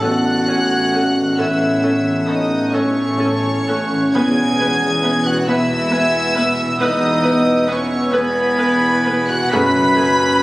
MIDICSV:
0, 0, Header, 1, 12, 480
1, 0, Start_track
1, 0, Key_signature, 4, "major"
1, 0, Tempo, 904977
1, 737, Time_signature, 6, 3, 24, 8
1, 1695, Tempo, 952381
1, 2175, Tempo, 884956
1, 4095, Tempo, 909091
1, 5542, End_track
2, 0, Start_track
2, 0, Title_t, "Violin section"
2, 0, Program_c, 0, 48
2, 12, Note_on_c, 0, 90, 106
2, 733, Note_on_c, 0, 88, 87
2, 735, Note_off_c, 0, 90, 0
2, 1209, Note_on_c, 0, 87, 88
2, 1210, Note_off_c, 0, 88, 0
2, 1448, Note_off_c, 0, 87, 0
2, 1449, Note_on_c, 0, 85, 105
2, 2160, Note_off_c, 0, 85, 0
2, 2174, Note_on_c, 0, 92, 119
2, 2767, Note_off_c, 0, 92, 0
2, 2778, Note_on_c, 0, 90, 100
2, 2890, Note_on_c, 0, 88, 122
2, 2898, Note_off_c, 0, 90, 0
2, 3611, Note_off_c, 0, 88, 0
2, 3620, Note_on_c, 0, 87, 121
2, 4086, Note_off_c, 0, 87, 0
2, 4103, Note_on_c, 0, 85, 103
2, 4330, Note_on_c, 0, 83, 120
2, 4332, Note_off_c, 0, 85, 0
2, 4942, Note_on_c, 0, 90, 113
2, 4943, Note_off_c, 0, 83, 0
2, 5065, Note_off_c, 0, 90, 0
2, 5066, Note_on_c, 0, 95, 127
2, 5542, Note_off_c, 0, 95, 0
2, 5542, End_track
3, 0, Start_track
3, 0, Title_t, "Oboe"
3, 0, Program_c, 1, 68
3, 15, Note_on_c, 1, 81, 74
3, 259, Note_on_c, 1, 80, 72
3, 267, Note_off_c, 1, 81, 0
3, 506, Note_on_c, 1, 78, 80
3, 514, Note_off_c, 1, 80, 0
3, 1449, Note_on_c, 1, 76, 72
3, 1457, Note_off_c, 1, 78, 0
3, 1694, Note_on_c, 1, 81, 77
3, 1702, Note_off_c, 1, 76, 0
3, 1935, Note_off_c, 1, 81, 0
3, 1938, Note_on_c, 1, 78, 75
3, 2179, Note_on_c, 1, 80, 73
3, 2187, Note_off_c, 1, 78, 0
3, 2754, Note_off_c, 1, 80, 0
3, 2902, Note_on_c, 1, 83, 90
3, 3140, Note_on_c, 1, 80, 89
3, 3148, Note_off_c, 1, 83, 0
3, 3372, Note_on_c, 1, 76, 88
3, 3381, Note_off_c, 1, 80, 0
3, 4321, Note_on_c, 1, 80, 97
3, 4329, Note_off_c, 1, 76, 0
3, 5053, Note_off_c, 1, 80, 0
3, 5056, Note_on_c, 1, 78, 85
3, 5293, Note_on_c, 1, 80, 94
3, 5301, Note_off_c, 1, 78, 0
3, 5515, Note_off_c, 1, 80, 0
3, 5518, Note_on_c, 1, 80, 86
3, 5542, Note_off_c, 1, 80, 0
3, 5542, End_track
4, 0, Start_track
4, 0, Title_t, "Flute"
4, 0, Program_c, 2, 73
4, 10, Note_on_c, 2, 78, 89
4, 733, Note_off_c, 2, 78, 0
4, 736, Note_on_c, 2, 76, 75
4, 1214, Note_on_c, 2, 75, 84
4, 1222, Note_off_c, 2, 76, 0
4, 1452, Note_on_c, 2, 73, 87
4, 1460, Note_off_c, 2, 75, 0
4, 2174, Note_off_c, 2, 73, 0
4, 2177, Note_on_c, 2, 80, 96
4, 2782, Note_on_c, 2, 78, 83
4, 2790, Note_off_c, 2, 80, 0
4, 2901, Note_on_c, 2, 76, 97
4, 2909, Note_off_c, 2, 78, 0
4, 3470, Note_off_c, 2, 76, 0
4, 3618, Note_on_c, 2, 75, 96
4, 4094, Note_on_c, 2, 73, 96
4, 4102, Note_off_c, 2, 75, 0
4, 4334, Note_on_c, 2, 71, 91
4, 4342, Note_off_c, 2, 73, 0
4, 4943, Note_on_c, 2, 78, 91
4, 4951, Note_off_c, 2, 71, 0
4, 5065, Note_off_c, 2, 78, 0
4, 5068, Note_on_c, 2, 83, 119
4, 5542, Note_off_c, 2, 83, 0
4, 5542, End_track
5, 0, Start_track
5, 0, Title_t, "Violin section"
5, 0, Program_c, 3, 48
5, 7, Note_on_c, 3, 78, 91
5, 732, Note_off_c, 3, 78, 0
5, 734, Note_on_c, 3, 76, 72
5, 1201, Note_off_c, 3, 76, 0
5, 1216, Note_on_c, 3, 75, 82
5, 1452, Note_off_c, 3, 75, 0
5, 1454, Note_on_c, 3, 73, 87
5, 2177, Note_off_c, 3, 73, 0
5, 2179, Note_on_c, 3, 80, 98
5, 2782, Note_off_c, 3, 80, 0
5, 2782, Note_on_c, 3, 78, 80
5, 2898, Note_off_c, 3, 78, 0
5, 2906, Note_on_c, 3, 76, 97
5, 3618, Note_on_c, 3, 75, 93
5, 3620, Note_off_c, 3, 76, 0
5, 4085, Note_off_c, 3, 75, 0
5, 4087, Note_on_c, 3, 73, 94
5, 4324, Note_off_c, 3, 73, 0
5, 4327, Note_on_c, 3, 71, 96
5, 4942, Note_off_c, 3, 71, 0
5, 4943, Note_on_c, 3, 78, 98
5, 5063, Note_off_c, 3, 78, 0
5, 5070, Note_on_c, 3, 83, 123
5, 5542, Note_off_c, 3, 83, 0
5, 5542, End_track
6, 0, Start_track
6, 0, Title_t, "Viola section"
6, 0, Program_c, 4, 48
6, 7, Note_on_c, 4, 69, 54
6, 8, Note_on_c, 4, 61, 57
6, 49, Note_off_c, 4, 69, 0
6, 51, Note_off_c, 4, 61, 0
6, 249, Note_on_c, 4, 61, 60
6, 249, Note_on_c, 4, 69, 56
6, 291, Note_off_c, 4, 69, 0
6, 292, Note_off_c, 4, 61, 0
6, 492, Note_on_c, 4, 61, 53
6, 494, Note_on_c, 4, 69, 57
6, 534, Note_off_c, 4, 61, 0
6, 537, Note_off_c, 4, 69, 0
6, 731, Note_on_c, 4, 69, 65
6, 734, Note_on_c, 4, 61, 67
6, 773, Note_off_c, 4, 69, 0
6, 777, Note_off_c, 4, 61, 0
6, 968, Note_on_c, 4, 69, 62
6, 970, Note_on_c, 4, 61, 60
6, 1010, Note_off_c, 4, 69, 0
6, 1012, Note_off_c, 4, 61, 0
6, 1203, Note_on_c, 4, 61, 59
6, 1203, Note_on_c, 4, 69, 68
6, 1245, Note_off_c, 4, 69, 0
6, 1246, Note_off_c, 4, 61, 0
6, 1448, Note_on_c, 4, 61, 60
6, 1449, Note_on_c, 4, 69, 62
6, 1491, Note_off_c, 4, 61, 0
6, 1491, Note_off_c, 4, 69, 0
6, 1693, Note_on_c, 4, 69, 64
6, 1694, Note_on_c, 4, 61, 63
6, 1733, Note_off_c, 4, 69, 0
6, 1734, Note_off_c, 4, 61, 0
6, 1936, Note_on_c, 4, 69, 66
6, 1940, Note_on_c, 4, 61, 62
6, 1976, Note_off_c, 4, 69, 0
6, 1980, Note_off_c, 4, 61, 0
6, 2175, Note_on_c, 4, 71, 76
6, 2177, Note_on_c, 4, 59, 75
6, 2218, Note_off_c, 4, 71, 0
6, 2221, Note_off_c, 4, 59, 0
6, 2418, Note_on_c, 4, 71, 60
6, 2419, Note_on_c, 4, 59, 64
6, 2462, Note_off_c, 4, 59, 0
6, 2462, Note_off_c, 4, 71, 0
6, 2655, Note_on_c, 4, 59, 67
6, 2655, Note_on_c, 4, 71, 66
6, 2699, Note_off_c, 4, 59, 0
6, 2699, Note_off_c, 4, 71, 0
6, 2892, Note_on_c, 4, 59, 68
6, 2895, Note_on_c, 4, 71, 68
6, 2935, Note_off_c, 4, 59, 0
6, 2938, Note_off_c, 4, 71, 0
6, 3128, Note_on_c, 4, 59, 69
6, 3130, Note_on_c, 4, 71, 69
6, 3172, Note_off_c, 4, 59, 0
6, 3173, Note_off_c, 4, 71, 0
6, 3369, Note_on_c, 4, 71, 65
6, 3372, Note_on_c, 4, 59, 67
6, 3412, Note_off_c, 4, 71, 0
6, 3416, Note_off_c, 4, 59, 0
6, 3614, Note_on_c, 4, 59, 83
6, 3617, Note_on_c, 4, 71, 82
6, 3658, Note_off_c, 4, 59, 0
6, 3661, Note_off_c, 4, 71, 0
6, 3851, Note_on_c, 4, 71, 71
6, 3852, Note_on_c, 4, 59, 74
6, 3895, Note_off_c, 4, 71, 0
6, 3896, Note_off_c, 4, 59, 0
6, 4086, Note_on_c, 4, 71, 74
6, 4088, Note_on_c, 4, 59, 74
6, 4129, Note_off_c, 4, 71, 0
6, 4131, Note_off_c, 4, 59, 0
6, 4323, Note_on_c, 4, 59, 72
6, 4323, Note_on_c, 4, 71, 77
6, 4365, Note_off_c, 4, 59, 0
6, 4365, Note_off_c, 4, 71, 0
6, 4562, Note_on_c, 4, 71, 72
6, 4566, Note_on_c, 4, 59, 72
6, 4604, Note_off_c, 4, 71, 0
6, 4608, Note_off_c, 4, 59, 0
6, 4816, Note_on_c, 4, 71, 72
6, 4819, Note_on_c, 4, 59, 71
6, 4858, Note_off_c, 4, 71, 0
6, 4861, Note_off_c, 4, 59, 0
6, 5065, Note_on_c, 4, 57, 86
6, 5065, Note_on_c, 4, 68, 84
6, 5107, Note_off_c, 4, 57, 0
6, 5107, Note_off_c, 4, 68, 0
6, 5296, Note_on_c, 4, 57, 75
6, 5297, Note_on_c, 4, 68, 77
6, 5339, Note_off_c, 4, 57, 0
6, 5339, Note_off_c, 4, 68, 0
6, 5542, End_track
7, 0, Start_track
7, 0, Title_t, "Clarinet"
7, 0, Program_c, 5, 71
7, 12, Note_on_c, 5, 66, 99
7, 733, Note_off_c, 5, 66, 0
7, 736, Note_on_c, 5, 64, 76
7, 1210, Note_on_c, 5, 63, 82
7, 1218, Note_off_c, 5, 64, 0
7, 1454, Note_on_c, 5, 61, 88
7, 1462, Note_off_c, 5, 63, 0
7, 2171, Note_off_c, 5, 61, 0
7, 2174, Note_on_c, 5, 68, 114
7, 2779, Note_on_c, 5, 66, 87
7, 2787, Note_off_c, 5, 68, 0
7, 2897, Note_on_c, 5, 64, 103
7, 2905, Note_off_c, 5, 66, 0
7, 3468, Note_off_c, 5, 64, 0
7, 3611, Note_on_c, 5, 63, 106
7, 4087, Note_on_c, 5, 61, 98
7, 4096, Note_off_c, 5, 63, 0
7, 4321, Note_on_c, 5, 59, 107
7, 4329, Note_off_c, 5, 61, 0
7, 4932, Note_off_c, 5, 59, 0
7, 4935, Note_on_c, 5, 66, 104
7, 5059, Note_on_c, 5, 71, 127
7, 5066, Note_off_c, 5, 66, 0
7, 5542, Note_off_c, 5, 71, 0
7, 5542, End_track
8, 0, Start_track
8, 0, Title_t, "French horn section"
8, 0, Program_c, 6, 60
8, 0, Note_on_c, 6, 57, 72
8, 0, Note_on_c, 6, 61, 71
8, 2150, Note_off_c, 6, 57, 0
8, 2179, Note_on_c, 6, 59, 74
8, 2874, Note_off_c, 6, 61, 0
8, 2890, Note_off_c, 6, 59, 0
8, 2897, Note_on_c, 6, 59, 82
8, 4978, Note_off_c, 6, 59, 0
8, 5068, Note_on_c, 6, 54, 97
8, 5068, Note_on_c, 6, 61, 89
8, 5542, Note_off_c, 6, 54, 0
8, 5542, Note_off_c, 6, 61, 0
8, 5542, End_track
9, 0, Start_track
9, 0, Title_t, "Harp"
9, 0, Program_c, 7, 46
9, 0, Note_on_c, 7, 45, 63
9, 0, Note_on_c, 7, 52, 49
9, 0, Note_on_c, 7, 57, 51
9, 0, Note_on_c, 7, 61, 50
9, 0, Note_on_c, 7, 69, 55
9, 129, Note_off_c, 7, 69, 0
9, 369, Note_off_c, 7, 61, 0
9, 376, Note_on_c, 7, 61, 55
9, 488, Note_off_c, 7, 57, 0
9, 495, Note_on_c, 7, 57, 53
9, 608, Note_off_c, 7, 52, 0
9, 614, Note_on_c, 7, 52, 49
9, 726, Note_off_c, 7, 45, 0
9, 733, Note_on_c, 7, 45, 64
9, 849, Note_off_c, 7, 57, 0
9, 856, Note_on_c, 7, 57, 52
9, 967, Note_off_c, 7, 52, 0
9, 973, Note_on_c, 7, 52, 53
9, 1087, Note_off_c, 7, 61, 0
9, 1094, Note_on_c, 7, 61, 58
9, 1333, Note_on_c, 7, 69, 63
9, 1565, Note_off_c, 7, 69, 0
9, 1571, Note_on_c, 7, 69, 60
9, 1812, Note_off_c, 7, 61, 0
9, 1818, Note_on_c, 7, 61, 56
9, 1930, Note_off_c, 7, 57, 0
9, 1936, Note_on_c, 7, 57, 57
9, 2051, Note_off_c, 7, 52, 0
9, 2057, Note_on_c, 7, 52, 57
9, 2174, Note_on_c, 7, 40, 76
9, 2192, Note_off_c, 7, 45, 0
9, 2195, Note_off_c, 7, 52, 0
9, 2195, Note_off_c, 7, 57, 0
9, 2195, Note_off_c, 7, 69, 0
9, 2197, Note_off_c, 7, 61, 0
9, 2304, Note_on_c, 7, 47, 55
9, 2418, Note_on_c, 7, 59, 59
9, 2541, Note_on_c, 7, 52, 60
9, 2776, Note_on_c, 7, 71, 63
9, 3015, Note_off_c, 7, 71, 0
9, 3021, Note_on_c, 7, 71, 66
9, 3374, Note_off_c, 7, 59, 0
9, 3380, Note_on_c, 7, 59, 58
9, 3495, Note_off_c, 7, 47, 0
9, 3612, Note_off_c, 7, 40, 0
9, 3618, Note_on_c, 7, 40, 78
9, 3731, Note_off_c, 7, 59, 0
9, 3737, Note_on_c, 7, 59, 62
9, 3858, Note_on_c, 7, 47, 63
9, 3976, Note_on_c, 7, 64, 63
9, 4204, Note_off_c, 7, 71, 0
9, 4211, Note_on_c, 7, 71, 71
9, 4437, Note_off_c, 7, 71, 0
9, 4443, Note_on_c, 7, 71, 71
9, 4641, Note_off_c, 7, 52, 0
9, 4682, Note_off_c, 7, 64, 0
9, 4688, Note_on_c, 7, 64, 67
9, 4808, Note_off_c, 7, 59, 0
9, 4814, Note_on_c, 7, 59, 69
9, 4934, Note_off_c, 7, 47, 0
9, 4940, Note_on_c, 7, 47, 67
9, 5061, Note_on_c, 7, 42, 85
9, 5082, Note_off_c, 7, 64, 0
9, 5083, Note_off_c, 7, 47, 0
9, 5083, Note_off_c, 7, 59, 0
9, 5083, Note_off_c, 7, 71, 0
9, 5085, Note_off_c, 7, 40, 0
9, 5184, Note_on_c, 7, 49, 67
9, 5300, Note_on_c, 7, 57, 67
9, 5417, Note_on_c, 7, 61, 66
9, 5542, Note_off_c, 7, 42, 0
9, 5542, Note_off_c, 7, 49, 0
9, 5542, Note_off_c, 7, 57, 0
9, 5542, Note_off_c, 7, 61, 0
9, 5542, End_track
10, 0, Start_track
10, 0, Title_t, "Cello section"
10, 0, Program_c, 8, 48
10, 12, Note_on_c, 8, 45, 70
10, 650, Note_off_c, 8, 45, 0
10, 737, Note_on_c, 8, 45, 73
10, 1365, Note_off_c, 8, 45, 0
10, 1451, Note_on_c, 8, 45, 79
10, 2092, Note_off_c, 8, 45, 0
10, 2175, Note_on_c, 8, 40, 85
10, 2814, Note_off_c, 8, 40, 0
10, 2903, Note_on_c, 8, 40, 88
10, 3533, Note_off_c, 8, 40, 0
10, 3615, Note_on_c, 8, 40, 88
10, 4244, Note_off_c, 8, 40, 0
10, 4328, Note_on_c, 8, 40, 94
10, 4978, Note_off_c, 8, 40, 0
10, 5066, Note_on_c, 8, 42, 96
10, 5542, Note_off_c, 8, 42, 0
10, 5542, End_track
11, 0, Start_track
11, 0, Title_t, "Grand piano"
11, 0, Program_c, 10, 0
11, 0, Control_c, 10, 64, 127
11, 0, Note_on_c, 10, 33, 60
11, 18, Note_on_c, 10, 40, 51
11, 715, Note_off_c, 10, 33, 0
11, 747, Control_c, 10, 64, 0
11, 828, Control_c, 10, 64, 127
11, 2170, Note_off_c, 10, 40, 0
11, 2178, Note_on_c, 10, 40, 69
11, 2184, Control_c, 10, 64, 0
11, 2287, Control_c, 10, 64, 127
11, 2897, Note_on_c, 10, 47, 57
11, 3596, Note_off_c, 10, 40, 0
11, 3626, Control_c, 10, 64, 0
11, 3705, Control_c, 10, 64, 127
11, 5064, Note_off_c, 10, 47, 0
11, 5069, Note_on_c, 10, 42, 85
11, 5075, Control_c, 10, 64, 0
11, 5167, Control_c, 10, 64, 127
11, 5542, Note_off_c, 10, 42, 0
11, 5542, End_track
12, 0, Start_track
12, 0, Title_t, "Double bass section"
12, 0, Program_c, 11, 48
12, 8, Note_on_c, 11, 33, 80
12, 648, Note_off_c, 11, 33, 0
12, 732, Note_on_c, 11, 33, 82
12, 1363, Note_off_c, 11, 33, 0
12, 1448, Note_on_c, 11, 33, 80
12, 2090, Note_off_c, 11, 33, 0
12, 2177, Note_on_c, 11, 28, 87
12, 2815, Note_off_c, 11, 28, 0
12, 2899, Note_on_c, 11, 28, 80
12, 3532, Note_off_c, 11, 28, 0
12, 3615, Note_on_c, 11, 28, 88
12, 4244, Note_off_c, 11, 28, 0
12, 4329, Note_on_c, 11, 28, 91
12, 4979, Note_off_c, 11, 28, 0
12, 5064, Note_on_c, 11, 30, 92
12, 5542, Note_off_c, 11, 30, 0
12, 5542, End_track
0, 0, End_of_file